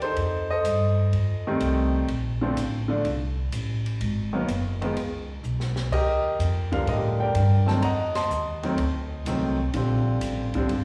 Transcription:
Already playing: upright bass D#2, grand piano G4 A#4
0.02 grand piano D#4 A4 C5, ride
0.16 upright bass F2, kick, ride
0.51 grand piano A4 C5 D#5
0.64 upright bass G2, kick, hi-hat pedal, ride
1.12 upright bass F2, kick, ride
1.47 grand piano D#3 G3 A3 C4
1.60 upright bass C2, kick, hi-hat pedal, ride
2.08 upright bass A#1, kick, ride
2.41 grand piano D3 F3 A3 C4
2.56 upright bass A1, kick, hi-hat pedal, ride
2.88 grand piano D3 F3 A3 D4
3.05 upright bass C2, kick, ride
3.52 upright bass A1, kick, hi-hat pedal, ride
3.86 ride
4.00 upright bass G#1, kick, ride
4.33 grand piano D#3 F#3 A#3 B3
4.48 upright bass F#1, kick, hi-hat pedal, ride
4.82 grand piano D#3 F3 G#3 B3, ride
4.96 upright bass C#2, kick, ride
5.43 upright bass B1, hi-hat pedal
5.60 snare
5.76 snare
5.91 upright bass D#2, grand piano G4 A#4 D#5, kick, crash
6.39 upright bass F2, kick, hi-hat pedal, ride
6.72 grand piano D3 F3 G3 A#4 F5, kick, ride
6.87 upright bass A2, grand piano A#4 D#5, ride
6.91 grand piano G4
7.20 grand piano A#4 D5 G5
7.35 upright bass G2, kick, hi-hat pedal, ride
7.66 grand piano D#3 F#3 A3 C4 A5, snare
7.82 upright bass F2, grand piano D#5 F#5 A#5, kick, ride
8.15 grand piano D#5 A5 C6, snare, ride
8.30 upright bass D#2, hi-hat pedal
8.63 grand piano D#3 F#3 A3 C4, ride
8.78 upright bass D2, kick, ride
9.25 upright bass C2, grand piano D#3 F#3 A3 C4, kick, hi-hat pedal, ride
9.73 upright bass A#1, grand piano D3 F3 G3 C4, kick, ride
10.21 upright bass A1, kick, hi-hat pedal, ride
10.54 grand piano D3 F3 G3 C4, kick, ride
10.69 upright bass G1, kick, ride

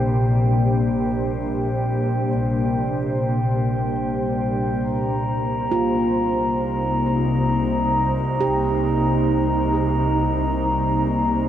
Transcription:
Already playing: double bass section A#1, ambient pad A#2 A#3 D4 G4 C5, synth drone C3 G3, glass harmonica G5
4.80 double bass section C2, ambient pad C3, glass harmonica A#5
5.71 handpan F4
6.00 ambient pad D#4
8.40 handpan G4

